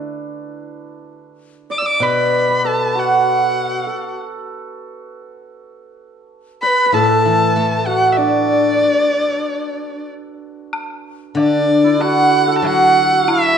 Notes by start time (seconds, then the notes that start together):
Already playing: D4 E4 F#4 B4
1.70 D5 D6
1.78 E6
1.82 D5 D6
2.00 B2 B4 B5
2.49 B4
2.59 B4
2.65 A4 A5
2.90 A4
2.95 F#4 F#5
3.87 A4
6.62 B4 D5 B5
6.67 B4
6.86 B4
6.92 A2 A4 A5
7.25 E3
7.56 A3
7.80 A4
7.86 F#4 F#5
8.12 E5
8.17 D4 D5
10.73 high woodblock
11.35 D3 D4 D5, low woodblock
11.84 E4
11.99 F#4 A4 F#5, high woodblock
12.48 A4
12.58 A5
12.62 F#3 F#4 F#5, high woodblock, low woodblock
13.10 F#4
13.27 E4 E5, high woodblock